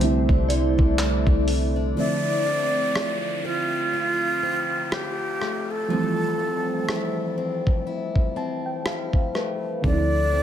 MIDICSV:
0, 0, Header, 1, 9, 480
1, 0, Start_track
1, 0, Key_signature, -1, "minor"
1, 0, Tempo, 983607
1, 962, Time_signature, 4, 2, 24, 8
1, 5089, End_track
2, 0, Start_track
2, 0, Title_t, "Synth bell"
2, 0, Program_c, 0, 98
2, 237, Note_on_c, 0, 74, 65
2, 933, Note_off_c, 0, 74, 0
2, 5089, End_track
3, 0, Start_track
3, 0, Title_t, "Ambient pad"
3, 0, Program_c, 1, 92
3, 0, Note_on_c, 1, 72, 70
3, 0, Note_on_c, 1, 81, 89
3, 3, Note_on_c, 1, 64, 88
3, 3, Note_on_c, 1, 74, 80
3, 941, Note_off_c, 1, 72, 0
3, 943, Note_off_c, 1, 81, 0
3, 953, Note_off_c, 1, 64, 0
3, 953, Note_off_c, 1, 74, 0
3, 5089, End_track
4, 0, Start_track
4, 0, Title_t, "Flute"
4, 0, Program_c, 2, 73
4, 965, Note_on_c, 2, 74, 113
4, 1686, Note_on_c, 2, 65, 95
4, 1694, Note_off_c, 2, 74, 0
4, 2408, Note_on_c, 2, 67, 84
4, 2415, Note_off_c, 2, 65, 0
4, 2786, Note_on_c, 2, 69, 86
4, 2793, Note_off_c, 2, 67, 0
4, 3744, Note_off_c, 2, 69, 0
4, 4810, Note_on_c, 2, 74, 113
4, 5089, Note_off_c, 2, 74, 0
4, 5089, End_track
5, 0, Start_track
5, 0, Title_t, "Steel-string acoustic guitar"
5, 0, Program_c, 3, 25
5, 0, Note_on_c, 3, 53, 86
5, 0, Note_on_c, 3, 57, 64
5, 0, Note_on_c, 3, 60, 61
5, 2, Note_on_c, 3, 48, 87
5, 58, Note_off_c, 3, 53, 0
5, 140, Note_off_c, 3, 60, 0
5, 142, Note_on_c, 3, 62, 62
5, 240, Note_off_c, 3, 57, 0
5, 242, Note_on_c, 3, 57, 65
5, 379, Note_off_c, 3, 62, 0
5, 381, Note_on_c, 3, 62, 61
5, 478, Note_off_c, 3, 57, 0
5, 480, Note_on_c, 3, 57, 61
5, 617, Note_off_c, 3, 62, 0
5, 619, Note_on_c, 3, 62, 63
5, 718, Note_off_c, 3, 57, 0
5, 720, Note_on_c, 3, 57, 62
5, 857, Note_off_c, 3, 62, 0
5, 859, Note_on_c, 3, 62, 62
5, 960, Note_on_c, 3, 50, 75
5, 1018, Note_off_c, 3, 48, 0
5, 1199, Note_off_c, 3, 62, 0
5, 1201, Note_on_c, 3, 60, 55
5, 1439, Note_on_c, 3, 65, 62
5, 1679, Note_off_c, 3, 60, 0
5, 1681, Note_on_c, 3, 60, 59
5, 1919, Note_off_c, 3, 65, 0
5, 1921, Note_on_c, 3, 65, 67
5, 2160, Note_off_c, 3, 60, 0
5, 2162, Note_on_c, 3, 60, 56
5, 2399, Note_off_c, 3, 65, 0
5, 2401, Note_on_c, 3, 65, 63
5, 2428, Note_off_c, 3, 57, 0
5, 2641, Note_on_c, 3, 57, 53
5, 2878, Note_off_c, 3, 50, 0
5, 2880, Note_on_c, 3, 53, 79
5, 3118, Note_off_c, 3, 60, 0
5, 3120, Note_on_c, 3, 60, 60
5, 3357, Note_off_c, 3, 65, 0
5, 3359, Note_on_c, 3, 64, 60
5, 3598, Note_off_c, 3, 60, 0
5, 3600, Note_on_c, 3, 60, 59
5, 3833, Note_off_c, 3, 64, 0
5, 3839, Note_on_c, 3, 64, 62
5, 4079, Note_off_c, 3, 60, 0
5, 4081, Note_on_c, 3, 60, 58
5, 4315, Note_off_c, 3, 64, 0
5, 4321, Note_on_c, 3, 64, 67
5, 4349, Note_off_c, 3, 57, 0
5, 4561, Note_on_c, 3, 57, 56
5, 4799, Note_off_c, 3, 53, 0
5, 4801, Note_on_c, 3, 50, 80
5, 4857, Note_off_c, 3, 64, 0
5, 5039, Note_off_c, 3, 60, 0
5, 5041, Note_on_c, 3, 60, 56
5, 5089, Note_off_c, 3, 50, 0
5, 5089, Note_off_c, 3, 57, 0
5, 5089, Note_off_c, 3, 60, 0
5, 5089, End_track
6, 0, Start_track
6, 0, Title_t, "FM electric piano"
6, 0, Program_c, 4, 5
6, 0, Control_c, 4, 64, 127
6, 0, Note_on_c, 4, 50, 83
6, 1, Note_on_c, 4, 55, 74
6, 7, Note_on_c, 4, 57, 77
6, 9, Control_c, 4, 64, 0
6, 14, Note_on_c, 4, 60, 76
6, 21, Note_on_c, 4, 64, 92
6, 104, Control_c, 4, 64, 127
6, 939, Note_off_c, 4, 50, 0
6, 943, Note_off_c, 4, 55, 0
6, 945, Note_off_c, 4, 57, 0
6, 949, Note_off_c, 4, 60, 0
6, 951, Note_on_c, 4, 50, 61
6, 953, Note_off_c, 4, 64, 0
6, 958, Note_on_c, 4, 53, 53
6, 964, Note_on_c, 4, 57, 54
6, 968, Control_c, 4, 64, 0
6, 970, Note_on_c, 4, 60, 59
6, 978, Note_on_c, 4, 76, 67
6, 1041, Control_c, 4, 64, 127
6, 2857, Note_off_c, 4, 50, 0
6, 2860, Note_off_c, 4, 53, 0
6, 2864, Note_off_c, 4, 57, 0
6, 2866, Note_off_c, 4, 60, 0
6, 2870, Note_off_c, 4, 76, 0
6, 2871, Note_on_c, 4, 53, 66
6, 2878, Note_on_c, 4, 55, 56
6, 2885, Note_on_c, 4, 57, 58
6, 2887, Control_c, 4, 64, 0
6, 2892, Note_on_c, 4, 60, 57
6, 2899, Note_on_c, 4, 52, 68
6, 2966, Control_c, 4, 64, 127
6, 4084, Note_on_c, 4, 81, 71
6, 4213, Note_off_c, 4, 81, 0
6, 4226, Note_on_c, 4, 79, 67
6, 4317, Note_off_c, 4, 79, 0
6, 4326, Note_on_c, 4, 77, 71
6, 4547, Note_off_c, 4, 77, 0
6, 4566, Note_on_c, 4, 71, 67
6, 4777, Note_off_c, 4, 53, 0
6, 4781, Note_off_c, 4, 55, 0
6, 4784, Note_off_c, 4, 57, 0
6, 4787, Note_off_c, 4, 71, 0
6, 4788, Note_off_c, 4, 60, 0
6, 4791, Note_off_c, 4, 52, 0
6, 4792, Note_on_c, 4, 50, 62
6, 4798, Note_on_c, 4, 53, 57
6, 4804, Note_on_c, 4, 57, 57
6, 4809, Control_c, 4, 64, 0
6, 4810, Note_on_c, 4, 60, 59
6, 4818, Note_on_c, 4, 63, 57
6, 4847, Note_off_c, 4, 63, 0
6, 4849, Note_on_c, 4, 64, 67
6, 4903, Control_c, 4, 64, 127
6, 5089, Note_off_c, 4, 50, 0
6, 5089, Note_off_c, 4, 53, 0
6, 5089, Note_off_c, 4, 57, 0
6, 5089, Note_off_c, 4, 60, 0
6, 5089, Note_off_c, 4, 64, 0
6, 5089, End_track
7, 0, Start_track
7, 0, Title_t, "808-style bass"
7, 0, Program_c, 5, 38
7, 0, Note_on_c, 5, 36, 108
7, 133, Note_off_c, 5, 36, 0
7, 142, Note_on_c, 5, 36, 100
7, 372, Note_off_c, 5, 36, 0
7, 385, Note_on_c, 5, 36, 100
7, 614, Note_off_c, 5, 36, 0
7, 619, Note_on_c, 5, 36, 100
7, 947, Note_off_c, 5, 36, 0
7, 4802, Note_on_c, 5, 38, 101
7, 5089, Note_off_c, 5, 38, 0
7, 5089, End_track
8, 0, Start_track
8, 0, Title_t, "Downlifter"
8, 0, Program_c, 6, 103
8, 962, Note_on_c, 6, 60, 77
8, 4802, Note_off_c, 6, 60, 0
8, 5089, End_track
9, 0, Start_track
9, 0, Title_t, "Drums"
9, 6, Note_on_c, 9, 42, 68
9, 55, Note_off_c, 9, 42, 0
9, 142, Note_on_c, 9, 36, 91
9, 191, Note_off_c, 9, 36, 0
9, 244, Note_on_c, 9, 42, 66
9, 293, Note_off_c, 9, 42, 0
9, 384, Note_on_c, 9, 36, 90
9, 433, Note_off_c, 9, 36, 0
9, 480, Note_on_c, 9, 42, 69
9, 482, Note_on_c, 9, 39, 127
9, 529, Note_off_c, 9, 42, 0
9, 531, Note_off_c, 9, 39, 0
9, 618, Note_on_c, 9, 36, 91
9, 667, Note_off_c, 9, 36, 0
9, 721, Note_on_c, 9, 46, 76
9, 769, Note_off_c, 9, 46, 0
9, 1442, Note_on_c, 9, 37, 106
9, 1491, Note_off_c, 9, 37, 0
9, 2401, Note_on_c, 9, 37, 114
9, 2450, Note_off_c, 9, 37, 0
9, 2643, Note_on_c, 9, 37, 62
9, 2691, Note_off_c, 9, 37, 0
9, 3360, Note_on_c, 9, 37, 105
9, 3409, Note_off_c, 9, 37, 0
9, 3742, Note_on_c, 9, 36, 83
9, 3790, Note_off_c, 9, 36, 0
9, 3980, Note_on_c, 9, 36, 79
9, 4029, Note_off_c, 9, 36, 0
9, 4322, Note_on_c, 9, 37, 106
9, 4371, Note_off_c, 9, 37, 0
9, 4457, Note_on_c, 9, 36, 83
9, 4506, Note_off_c, 9, 36, 0
9, 4564, Note_on_c, 9, 37, 63
9, 4612, Note_off_c, 9, 37, 0
9, 4801, Note_on_c, 9, 36, 111
9, 4850, Note_off_c, 9, 36, 0
9, 5089, End_track
0, 0, End_of_file